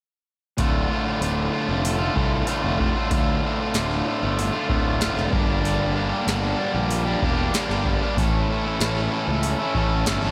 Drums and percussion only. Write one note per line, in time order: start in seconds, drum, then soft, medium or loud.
0.58 kick medium
0.58 open hi-hat soft
1.22 open hi-hat soft
1.85 open hi-hat soft
2.16 kick medium
2.47 open hi-hat soft
2.80 kick medium
3.11 kick medium
3.11 open hi-hat soft
3.74 snare medium
3.74 open hi-hat soft
4.39 open hi-hat soft
4.70 kick medium
5.01 snare medium
5.01 open hi-hat soft
5.19 snare soft
5.33 kick medium
5.65 open hi-hat soft
6.28 snare medium
6.28 open hi-hat soft
6.91 open hi-hat soft
7.22 kick medium
7.54 snare medium
7.54 open hi-hat soft
7.71 snare soft
7.86 kick medium
8.17 kick loud
8.17 open hi-hat soft
8.80 snare loud
8.80 open hi-hat soft
9.43 open hi-hat soft
9.75 kick medium
10.06 snare medium
10.06 open hi-hat soft